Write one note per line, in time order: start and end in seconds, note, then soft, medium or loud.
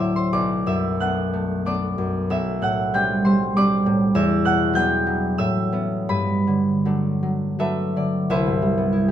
0.00 0.36 D2 medium
0.00 0.35 A2 soft
0.00 2.32 F#3 soft
0.00 0.36 C4 soft
0.00 0.36 E4 soft
0.00 2.33 B4 soft
0.00 0.16 C5 medium
0.00 0.33 D5 medium
0.00 0.36 E5 soft
0.00 0.53 F#5 medium
0.00 2.32 B5 medium
0.00 0.11 D6 medium
0.00 0.28 E6 medium
0.16 0.36 C5 soft
0.16 0.44 C6 medium
0.33 2.29 B1 medium
0.33 1.66 D5 medium
0.33 1.65 D6 medium
0.66 1.97 F#2 soft
0.66 2.30 E5 medium
0.66 1.23 E6 medium
1.00 1.32 A3 soft
1.00 1.65 B3 soft
1.00 1.65 D4 soft
1.00 2.33 F#5 medium
1.00 2.33 F#6 medium
1.33 1.65 A3 soft
1.66 4.18 A3 soft
1.66 2.33 B3 soft
1.66 2.93 D4 soft
1.66 3.57 D5 medium
1.66 3.55 D6 medium
1.98 2.33 F#2 soft
2.30 4.17 B1 medium
2.30 4.15 E5 medium
2.30 4.14 E6 medium
2.62 3.85 A2 soft
2.62 4.45 F#5 medium
2.62 3.15 F#6 medium
2.94 3.24 G3 soft
2.94 3.56 C4 soft
2.94 3.56 D4 soft
2.94 4.76 G5 medium
2.94 4.74 G6 medium
3.25 3.55 G3 soft
3.25 4.18 C5 medium
3.25 4.17 C6 medium
3.56 7.46 G3 soft
3.56 4.18 C4 soft
3.56 4.75 D4 soft
3.56 5.42 D5 medium
3.56 5.41 D6 medium
3.86 4.17 A2 soft
4.15 5.40 E2 medium
4.15 5.38 E5 medium
4.15 5.37 E6 loud
4.45 5.41 B2 soft
4.45 5.41 F#5 medium
4.45 5.41 F#6 medium
4.73 5.05 F#3 soft
4.73 5.71 B3 soft
4.73 8.67 G5 medium
4.73 8.65 G6 loud
4.78 5.41 D4 medium
5.07 5.41 F#3 soft
5.38 6.12 A2 medium
5.38 6.12 E5 medium
5.38 6.12 E6 loud
5.72 8.76 B3 soft
5.72 6.12 C#4 soft
6.09 8.32 G2 medium
6.09 7.59 B4 medium
6.09 9.12 B5 medium
6.47 7.95 D3 soft
6.85 7.21 F#3 soft
6.85 7.58 A3 soft
6.85 7.58 D4 soft
7.23 7.58 F#3 soft
7.59 8.32 F#3 soft
7.59 8.33 A3 soft
7.59 8.33 D4 soft
7.59 8.33 A4 medium
7.59 8.30 B4 medium
7.59 8.20 E5 medium
7.96 8.33 D3 soft
7.96 8.33 D5 medium
8.30 9.12 C2 medium
8.30 9.12 B4 medium
8.30 9.12 C5 medium
8.30 9.12 E5 medium
8.47 9.12 G2 soft
8.62 9.12 G3 soft
8.78 9.12 B3 soft
8.93 9.12 E4 soft
9.08 9.12 G4 soft